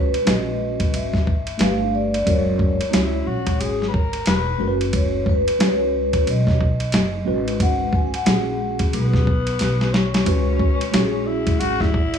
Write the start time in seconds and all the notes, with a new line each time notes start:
Already playing: C#2 G#3 C#4 F#4 B4
0.14 muted upright bass stroke, ride
0.25 A#1 G#3 C#4 F#4 B4 D#5, snare, hi-hat pedal, ride
0.80 kick, ride
0.93 G#1 E5, ride
1.14 kick, snare
1.27 kick
1.47 ride
1.58 G1 A3 D4 G4 B4 F5, snare, hi-hat pedal, ride
1.95 D5
2.14 ride
2.24 F#1 G#3 C#4 F#4 A#4 C#5, kick, ride
2.59 kick
2.81 muted upright bass stroke, ride
2.89 G#3 C#4 D#4 F#4
2.93 C#2 E4 C#5, snare, hi-hat pedal, ride
3.27 A#1 F#4
3.47 kick, ride
3.60 G#1 G#4, ride
3.82 snare
3.88 B4
3.94 A#4, kick
4.13 ride
4.26 E1 B4, snare, hi-hat pedal, ride
4.58 F#1 G#3 C#4 F#4 A#4
4.68 B4
4.81 ride
4.93 C#5, kick, ride
5.26 B4, kick
5.47 muted upright bass stroke, ride
5.59 C#2 G#3 C#4 F#4 B4, snare, hi-hat pedal, ride
5.68 C#5
6.13 kick, ride
6.27 B1 D#5, ride
6.47 kick, snare
6.61 kick
6.80 ride
6.92 F#1, snare, hi-hat pedal, ride
7.25 G#1 G#3 C#4 F#4 B4
7.48 ride
7.60 F#5, kick, ride
7.93 G#5, kick
8.14 F#5, muted upright bass stroke, ride
8.26 A#1 G#3 C#4 F#4 G#4, snare, hi-hat pedal, ride
8.79 kick, ride
8.93 B1 B3, ride
9.13 kick, snare
9.27 kick
9.47 ride
9.59 B1, snare, hi-hat pedal, ride
9.81 snare
9.93 C#4, snare
10.14 snare, ride
10.25 C#2 G#3 C#4 F#4 B4, kick, ride
10.59 kick
10.81 muted upright bass stroke, ride
10.91 A#1 G#3 C#4 F#4 G4, snare, hi-hat pedal, ride
11.01 G#4
11.26 E4
11.47 kick, ride
11.60 G#1 F#4, ride
11.80 E4, kick, snare
11.94 kick
12.14 ride